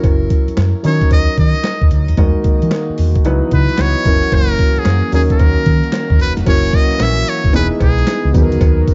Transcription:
Already playing: grand piano F#3 C#4 E4 A#4
0.04 fingered electric bass F#1, kick, closed hi-hat, cowbell
0.30 kick, closed hi-hat
0.48 muted fingered electric bass stroke, closed hi-hat
0.57 fingered electric bass F#2, snare, clap, closed hi-hat, cowbell
0.83 fingered electric bass D#3, grand piano F#3 C#4 D#4 A#4, muted trumpet C#5, open hi-hat
1.01 kick, closed hi-hat
1.11 fingered electric bass D#2, muted trumpet D#5, kick, closed hi-hat, cowbell
1.37 fingered electric bass D#3, muted trumpet D#5, kick, closed hi-hat
1.55 closed hi-hat
1.64 snare, clap, closed hi-hat, cowbell
1.82 fingered electric bass D#2, kick
1.91 fingered electric bass D2, closed hi-hat
2.08 fingered electric bass D#2, closed hi-hat
2.17 fingered electric bass E2, analog synth pad D#3 G#3 A#3 F#4, grand piano G#3 D#4 F#4 A#4, kick, closed hi-hat, cowbell
2.44 muted fingered electric bass stroke, kick, closed hi-hat
2.62 fingered electric bass E3, closed hi-hat
2.71 snare, clap, closed hi-hat, cowbell
2.90 muted fingered electric bass stroke
2.98 fingered electric bass E2, open hi-hat
3.15 kick, closed hi-hat
3.25 fingered electric bass C#2, analog synth pad E3 B3 D#5, grand piano F#3 D#4 E4 B4, closed hi-hat, cowbell
3.51 fingered electric bass C#3, muted trumpet B4, kick, closed hi-hat
3.69 closed hi-hat
3.78 fingered electric bass C#2, muted trumpet C#5, snare, clap, closed hi-hat, cowbell
4.05 fingered electric bass F#1, grand piano F#3 C#4 E4 A#4, analog synth pad A#3 C#4, kick, closed hi-hat
4.23 closed hi-hat
4.32 fingered electric bass F#1, muted trumpet A#4, kick, closed hi-hat, cowbell
4.59 kick, closed hi-hat
4.76 muted trumpet G#4, muted fingered electric bass stroke, closed hi-hat
4.85 fingered electric bass F#2, snare, clap, closed hi-hat, cowbell
5.12 fingered electric bass D#2, analog synth pad D#3, grand piano F#3 C#4 D#4 A#4, muted trumpet G#4, open hi-hat
5.30 muted trumpet A#4, kick, closed hi-hat
5.39 fingered electric bass D#2, kick, closed hi-hat, cowbell
5.66 fingered electric bass D#3, kick, closed hi-hat
5.84 closed hi-hat
5.93 snare, clap, closed hi-hat, cowbell
6.10 fingered electric bass D#2, kick
6.20 fingered electric bass E1, muted trumpet B4, open hi-hat
6.37 fingered electric bass F1, snare, closed hi-hat
6.46 fingered electric bass F#1, analog synth pad E3 A#3 C#4 F#4, grand piano F#3 C#4 E4 A#4, muted trumpet C#5, kick, closed hi-hat, crash, tambourine, cowbell
6.73 muted trumpet D#5, kick, closed hi-hat, tambourine
6.91 muted fingered electric bass stroke, closed hi-hat
7.00 fingered electric bass A#1, muted trumpet E5, snare, clap, closed hi-hat, tambourine, cowbell
7.27 muted trumpet C#5, open hi-hat, tambourine
7.44 fingered electric bass F#1, kick, closed hi-hat
7.53 fingered electric bass E1, analog synth pad E3 G#3 B3 D#4, grand piano E3 B3 D#4 G#4, muted trumpet B4, closed hi-hat, tambourine, cowbell
7.80 fingered electric bass B1, muted trumpet G#4, kick, closed hi-hat, cowbell
7.98 closed hi-hat
8.07 snare, clap, closed hi-hat, tambourine, cowbell
8.25 fingered electric bass C#2
8.33 fingered electric bass D#2, grand piano F#3 B3 D#4 G#4, analog synth pad F#4 A#4, kick, closed hi-hat, tambourine
8.42 grand piano A#4
8.52 fingered electric bass D2, closed hi-hat
8.61 fingered electric bass D#2, kick, closed hi-hat, tambourine, cowbell
8.88 kick, closed hi-hat, tambourine

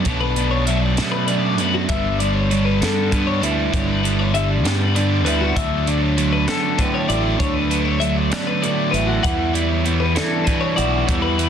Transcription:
Already playing: clean electric guitar A3
0.05 fingered electric bass B1, clean electric guitar B2 C#5, overdriven electric guitar B2 F#3 B3 D4, kick, closed hi-hat
0.21 clean electric guitar B4
0.36 overdriven electric guitar B2 F#3 B3 D4, closed hi-hat
0.51 clean electric guitar C#5
0.65 overdriven electric guitar B2 F#3 B3 D4, clean electric guitar F#3 E5, closed hi-hat
0.81 clean electric guitar D5
0.97 fingered electric bass B2, overdriven electric guitar B2 F#3 B3 D4, snare, closed hi-hat
1.01 clean electric guitar A3
1.12 clean electric guitar B4
1.27 clean electric guitar F#2 D5, overdriven electric guitar B2 F#3 B3 D4, closed hi-hat
1.58 fingered electric bass F#2, overdriven electric guitar B2 F#3 B3 D4, clean electric guitar B4, closed hi-hat
1.74 clean electric guitar F#4
1.89 fingered electric bass G1, clean electric guitar G2 E5, overdriven electric guitar D3 G3 B3 D4, kick, closed hi-hat
2.19 overdriven electric guitar D3 G3 B3 D4, clean electric guitar D5, closed hi-hat
2.35 clean electric guitar C#5
2.50 overdriven electric guitar D3 G3 B3 D4, clean electric guitar G3, closed hi-hat
2.65 clean electric guitar B4
2.81 fingered electric bass G2, overdriven electric guitar D3 G3 B3 D4, clean electric guitar B3 A4, snare, closed hi-hat
3.12 overdriven electric guitar D3 G3 B3 D4, clean electric guitar D3 B4, kick, closed hi-hat
3.27 clean electric guitar C#5
3.41 fingered electric bass D2, overdriven electric guitar D3 G3 B3 D4, clean electric guitar E4 D5, closed hi-hat
3.72 fingered electric bass G1, clean electric guitar G2 C#5, overdriven electric guitar D3 G3 B3 D4, kick, closed hi-hat
3.88 clean electric guitar B4
4.03 overdriven electric guitar D3 G3 B3 D4, closed hi-hat
4.19 clean electric guitar C#5
4.34 overdriven electric guitar D3 G3 B3 D4, clean electric guitar G3 E5, closed hi-hat
4.50 clean electric guitar D5
4.64 fingered electric bass G2, overdriven electric guitar D3 G3 B3 D4, clean electric guitar B3, snare, closed hi-hat
4.80 clean electric guitar B4
4.95 overdriven electric guitar D3 G3 B3 D4, clean electric guitar D3 D5, closed hi-hat
5.25 fingered electric bass D2, overdriven electric guitar D3 G3 B3 D4, clean electric guitar E4 B4, closed hi-hat
5.41 clean electric guitar F#4
5.56 fingered electric bass D2, clean electric guitar D3 E5, overdriven electric guitar D3 F#3 A3 D4, kick, closed hi-hat
5.87 overdriven electric guitar D3 F#3 A3 D4, clean electric guitar D5, closed hi-hat
6.02 clean electric guitar C#5
6.17 overdriven electric guitar D3 F#3 A3 D4, clean electric guitar F#3, closed hi-hat
6.33 clean electric guitar B4
6.47 fingered electric bass D3, overdriven electric guitar D3 F#3 A3 D4, clean electric guitar B3 A4, snare, closed hi-hat
6.78 clean electric guitar A2 B4, overdriven electric guitar D3 F#3 A3 D4, kick, closed hi-hat
6.94 clean electric guitar C#5
7.08 fingered electric bass A1, overdriven electric guitar D3 F#3 A3 D4, clean electric guitar E4 D5, closed hi-hat
7.38 fingered electric bass D2, clean electric guitar D3 C#5, overdriven electric guitar D3 F#3 A3 D4, kick, closed hi-hat
7.54 clean electric guitar B4
7.70 overdriven electric guitar D3 F#3 A3 D4, closed hi-hat
7.85 clean electric guitar C#5
8.00 overdriven electric guitar D3 F#3 A3 D4, clean electric guitar F#3 E5, closed hi-hat
8.17 clean electric guitar D5
8.31 overdriven electric guitar D3 F#3 A3 D4, fingered electric bass D3, clean electric guitar B3, snare, closed hi-hat
8.47 clean electric guitar B4
8.62 clean electric guitar A2 D5, overdriven electric guitar D3 F#3 A3 D4, closed hi-hat
8.91 fingered electric bass A1, overdriven electric guitar D3 F#3 A3 D4, clean electric guitar E4 B4, closed hi-hat
9.07 clean electric guitar F#4
9.22 fingered electric bass E2, overdriven electric guitar E3 G3 B3 E4, clean electric guitar E3 F#5, kick, closed hi-hat
9.53 overdriven electric guitar E3 G3 B3 E4, clean electric guitar D5, closed hi-hat
9.70 clean electric guitar C#5
9.84 overdriven electric guitar E3 G3 B3 E4, clean electric guitar B3, closed hi-hat
10.00 clean electric guitar B4
10.15 overdriven electric guitar E3 G3 B3 E4, fingered electric bass E3, clean electric guitar D4 A4, snare, closed hi-hat
10.45 clean electric guitar B2 B4, overdriven electric guitar E3 G3 B3 E4, kick, closed hi-hat
10.61 clean electric guitar C#5
10.76 fingered electric bass B1, overdriven electric guitar E3 G3 B3 E4, clean electric guitar F#4 D5, closed hi-hat
11.07 fingered electric bass E2, overdriven electric guitar E3 G3 B3 E4, clean electric guitar E3 C#5, kick, closed hi-hat
11.22 clean electric guitar B4
11.38 overdriven electric guitar E3 G3 B3 E4, closed hi-hat

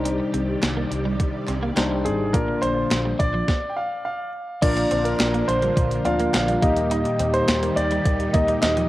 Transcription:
Already playing: fingered electric bass C2, string machine C3 D#3 G3 G4 D5, tine electric piano G3 D4 D#4 C5
0.05 clean electric guitar C4, closed hi-hat
0.20 muted clean electric guitar stroke
0.34 fingered electric bass C2, clean electric guitar C4, closed hi-hat
0.62 fingered electric bass C2, snare, clap, closed hi-hat
0.77 clean electric guitar A#3
0.91 fingered electric bass C2, muted clean electric guitar stroke, closed hi-hat
1.05 clean electric guitar G3
1.20 muted clean electric guitar stroke, kick, closed hi-hat
1.47 fingered electric bass C2, clean electric guitar C4, clap, closed hi-hat
1.63 clean electric guitar A#3
1.76 fingered electric bass C2, tine electric piano G3 D4 D#4 C5, muted clean electric guitar stroke, snare, clap, closed hi-hat
1.91 clean electric guitar G3
2.05 fingered electric bass G#1, clean electric guitar C4, grand piano G#4, closed hi-hat
2.33 fingered electric bass A#1, string machine A#2 D3 F3 F4, tine electric piano A#3 D4 F4 D5, clean electric guitar A#3, grand piano A#4, kick, closed hi-hat
2.48 muted clean electric guitar stroke
2.62 fingered electric bass A#1, clean electric guitar A#3, grand piano C5, closed hi-hat
2.91 fingered electric bass A#1, snare, clap, closed hi-hat
3.05 clean electric guitar G3
3.19 fingered electric bass A#1, grand piano D5, muted clean electric guitar stroke, kick, closed hi-hat
3.34 clean electric guitar F3
3.48 kick, snare
3.69 grand piano G5
3.77 grand piano F5
4.05 grand piano F5
4.62 fingered electric bass A#1, string machine A#2 D3 F3 D4 F4, tine electric piano A#3 D4 F4 D5, clean electric guitar A#3, analog polysynth D4 F4 A#4, grand piano D5, kick, closed hi-hat, crash
4.77 muted clean electric guitar stroke, closed hi-hat
4.91 fingered electric bass A#1, clean electric guitar C4, closed hi-hat
5.05 grand piano A#4, closed hi-hat
5.20 fingered electric bass A#1, snare, clap, closed hi-hat, tambourine
5.34 clean electric guitar A#3, closed hi-hat
5.48 fingered electric bass A#1, grand piano C5, muted clean electric guitar stroke, closed hi-hat
5.62 clean electric guitar G3, closed hi-hat
5.77 fingered electric bass A#1, muted clean electric guitar stroke, kick, closed hi-hat
5.91 closed hi-hat
6.05 fingered electric bass D2, tine electric piano A#3 D4 F4 D5, clean electric guitar C4, grand piano F5, closed hi-hat
6.19 clean electric guitar A#3, closed hi-hat
6.34 fingered electric bass A#1, grand piano F5, muted clean electric guitar stroke, snare, clap, closed hi-hat, tambourine
6.48 clean electric guitar G3, closed hi-hat
6.62 fingered electric bass D#2, string machine D#3 G3 D#4 G4, tine electric piano A#3 D#4 G4 D#5, analog polysynth A#3 D#4 G4, clean electric guitar A#3, kick, closed hi-hat
6.77 closed hi-hat
6.91 clean electric guitar D#4, grand piano D#5, closed hi-hat
7.05 muted clean electric guitar stroke, closed hi-hat
7.19 fingered electric bass D#2, clean electric guitar C4, closed hi-hat
7.34 grand piano C5, closed hi-hat
7.48 fingered electric bass D#2, snare, clap, closed hi-hat, tambourine
7.63 clean electric guitar A#3, closed hi-hat
7.76 fingered electric bass D#2, grand piano D5, muted clean electric guitar stroke, closed hi-hat
7.91 clean electric guitar G3, closed hi-hat
8.05 fingered electric bass D#2, muted clean electric guitar stroke, kick, closed hi-hat
8.20 closed hi-hat
8.33 fingered electric bass D#2, tine electric piano A#3 D#4 G4 D#5, clean electric guitar A#3, grand piano D#5, kick, closed hi-hat
8.48 clean electric guitar G3, closed hi-hat
8.62 fingered electric bass D#2, grand piano D#5, snare, clap, closed hi-hat, tambourine
8.77 clean electric guitar F3, closed hi-hat

